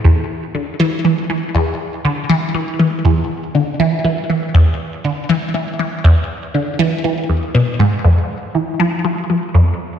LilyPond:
\new Staff \with { instrumentName = "Synth arpeggio sound" } { \clef bass \time 4/4 \key f \lydian \tempo 4 = 120 e,8 r8 d8 e8 e16 r16 e8 e,8 r8 | d8 e8 e16 r16 e8 e,8 r8 d8 e8 | e16 r16 e8 e,8 r8 d8 e8 e16 r16 e8 | e,8 r8 d8 e8 e16 r16 e,16 r16 b,8 gis,8 |
f,8 r8 e8 f8 f16 r16 f8 f,8 r8 | }